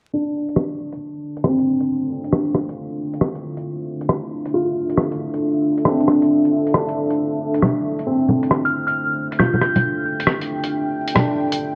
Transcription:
0.12 D4
0.49 closed hi-hat
0.56 cross-stick
0.63 A4
0.92 closed hi-hat
0.97 F5
1.37 closed hi-hat
1.44 C4 E5, cross-stick
1.59 closed hi-hat
1.81 closed hi-hat
2.24 closed hi-hat
2.33 cross-stick
2.55 cross-stick
2.69 closed hi-hat
3.14 closed hi-hat
3.21 cross-stick
3.35 closed hi-hat
3.57 closed hi-hat
4.01 closed hi-hat
4.09 cross-stick
4.46 closed hi-hat
4.54 F4
4.90 closed hi-hat
4.97 cross-stick
5.12 closed hi-hat
5.34 closed hi-hat
5.78 closed hi-hat
5.85 C4 D4, cross-stick
6.00 closed hi-hat
6.08 cross-stick
6.22 closed hi-hat
6.45 closed hi-hat
6.67 closed hi-hat
6.74 D4, cross-stick
6.89 closed hi-hat
7.10 closed hi-hat
7.54 closed hi-hat
7.62 cross-stick, low bongo
7.99 closed hi-hat
8.07 C4
8.29 low bongo
8.43 closed hi-hat
8.51 cross-stick
8.65 F6, closed hi-hat
8.87 F6, closed hi-hat
9.16 G5
9.32 closed hi-hat
9.39 F4 G6, cross-stick, low bongo
9.54 low bongo
9.61 G6, cross-stick
9.76 closed hi-hat, low bongo
10.20 closed hi-hat
10.27 cross-stick
10.41 closed hi-hat
10.64 closed hi-hat
11.08 closed hi-hat
11.15 D4, cross-stick, low bongo
11.52 closed hi-hat

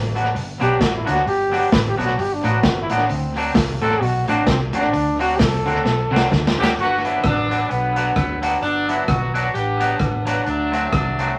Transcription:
Already playing: A1
0.15 F#3 B3 D4 F#4, hi-hat pedal, open hi-hat
0.34 G1 G2, muted clean electric guitar stroke, hi-hat pedal, open hi-hat
0.60 B1 B2 F#3 B3 D4 F#4 G4, hi-hat pedal, open hi-hat
0.79 A1 A2 F#4, muted clean electric guitar stroke, kick, snare, hi-hat pedal, open hi-hat
0.97 E4
1.05 D2 D3 F#3 B3 D4 F#4, hi-hat pedal, open hi-hat
1.11 F#4
1.26 G1 G2 G4, hi-hat pedal, open hi-hat
1.52 F#3 B3 D4 F#4, hi-hat pedal, open hi-hat
1.58 G4
1.72 A1 A2 B4, kick, snare, hi-hat pedal, open hi-hat
1.89 G4
1.97 B1 B2 F#3 B3 D4 F#4, hi-hat pedal, open hi-hat
2.05 F#4
2.17 G1 G2 G4, muted clean electric guitar stroke, hi-hat pedal, open hi-hat
2.34 D4
2.44 A1 A2 F#3 B3 D4 F#4, hi-hat pedal, open hi-hat
2.49 F#4
2.63 G2, muted clean electric guitar stroke, kick, snare, hi-hat pedal, open hi-hat
2.82 E4
2.90 A1 A2 F#3 B3 D4 F#4, hi-hat pedal, open hi-hat
2.96 D4
3.09 D2 D3 C4, hi-hat pedal, open hi-hat
3.36 F#3 C4 D4 F#4, hi-hat pedal, open hi-hat
3.54 C2 C3, kick, snare, hi-hat pedal, open hi-hat
3.82 A1 A2 F#3 C4 D4 F#4 A4, hi-hat pedal, open hi-hat
4.01 B1 B2 F#4, muted clean electric guitar stroke, hi-hat pedal, open hi-hat
4.28 A2 F#3 C4 D4 F#4, hi-hat pedal, open hi-hat
4.46 C2 C3 C4, muted clean electric guitar stroke, kick, snare, hi-hat pedal, open hi-hat
4.73 A1 A2 F#3 C4 D4 F#4, hi-hat pedal, open hi-hat
4.93 D2 D3, hi-hat pedal, open hi-hat
5.19 F#3 C4 D4 F#4, hi-hat pedal, open hi-hat
5.39 C2 C3 A4, kick, snare, hi-hat pedal, open hi-hat
5.66 D2 D3 F#3 C4 D4 F#4, hi-hat pedal, open hi-hat
5.85 B1 B2, muted clean electric guitar stroke, snare
6.11 C2 C3 F#3 C4 D4 F#4
6.16 snare
6.31 D2 D3, muted clean electric guitar stroke, kick, snare
6.47 snare
6.58 D2 D3 F#3 C4 D4 F#4 G4
6.64 snare
6.78 G1 B3 D4 F#4, closed hi-hat
7.05 F#3 B3 D4 E4 F#4, closed hi-hat
7.24 A1 D4, kick, cross-stick, closed hi-hat
7.28 F#3 B3
7.50 F#3 B3 D4 F#4, closed hi-hat
7.70 B1 D3 F#3 B3, closed hi-hat
7.96 F#3 B3 D4 F#4, closed hi-hat
8.15 D2 B3, kick, cross-stick, closed hi-hat
8.41 F#3 B3 C4 D4 F#4, closed hi-hat
8.62 G1 F#3 B3 D4, closed hi-hat
8.87 F#3 B3 D4 E4 F#4, closed hi-hat
9.08 B1 F#4, kick, cross-stick, closed hi-hat
9.33 F#3 B3 D4 F#4, closed hi-hat
9.54 A1 B3 D4 G4, closed hi-hat
9.80 F#3 B3 D4 F#4, closed hi-hat
10.00 A1, kick, cross-stick, closed hi-hat
10.26 F#3 B3 D4 F#4, closed hi-hat
10.46 D2 F#3 A3 D4, closed hi-hat
10.72 F#3 A3 C4 D4 F#4, closed hi-hat
10.93 C2 D4, kick, cross-stick, closed hi-hat
11.19 F#3 A3 C4 D4 F#4, closed hi-hat

